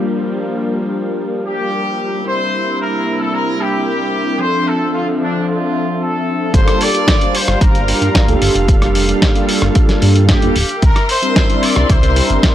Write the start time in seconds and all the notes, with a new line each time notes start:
Already playing: F3 G3 A#3 D4 F4 A#4
1.45 G4
2.25 C3 G3 A#3 C4 D4 E4 A#4 C5
2.79 A#4
3.20 A4
3.33 A#4
3.59 G4
4.38 D3 F3 C4 D4 A4 C5 E5
4.66 A4
4.93 F4
5.21 D4
5.47 F4
6.00 A4
6.53 G1 G3 A#3 D4 F4 G4 A4 C5 F5, kick, closed hi-hat
6.68 cross-stick, closed hi-hat
6.81 D5, open hi-hat
6.93 G3 A#3 D4 F4 A4, closed hi-hat
7.08 kick, snare, closed hi-hat
7.20 G3 A#3 D4 F4 C5, closed hi-hat
7.35 C5, open hi-hat
7.48 G1, cross-stick, closed hi-hat
7.61 G1 A#4, kick, closed hi-hat
7.75 closed hi-hat
7.87 G3 A#3 D4 F4 A#4, open hi-hat
8.01 G2, closed hi-hat
8.15 kick, snare, closed hi-hat
8.27 D2 G3 A#3 D4 F4 A4, closed hi-hat
8.41 G1, open hi-hat
8.55 F1, closed hi-hat
8.68 kick, closed hi-hat
8.82 cross-stick, closed hi-hat
8.95 open hi-hat
9.08 G3 A#3 D4 F4 A4, closed hi-hat
9.22 kick, snare, closed hi-hat
9.34 G3 A#3 D4 F4 A4, closed hi-hat
9.49 open hi-hat
9.62 G1, cross-stick, closed hi-hat
9.75 kick, closed hi-hat
9.89 snare, closed hi-hat
10.02 G2, open hi-hat
10.16 closed hi-hat
10.29 G4, kick, snare, closed hi-hat
10.42 F1 G3 A#3 D4 F4 A4, closed hi-hat
10.56 D1, open hi-hat
10.69 closed hi-hat
10.82 C2 A#4 E5 C6, kick, closed hi-hat
10.96 cross-stick, closed hi-hat
11.09 C5, open hi-hat
11.22 G3 C4 D4 E4 A#4, closed hi-hat
11.36 kick, snare, closed hi-hat
11.48 G3 C4 D4 E4 D5, closed hi-hat
11.63 D5, open hi-hat
11.76 C2, cross-stick, closed hi-hat
11.89 C2 C5, kick, closed hi-hat
12.03 closed hi-hat
12.16 G3 C4 D4 E4 A#4, open hi-hat
12.30 G1, closed hi-hat
12.43 kick, snare, closed hi-hat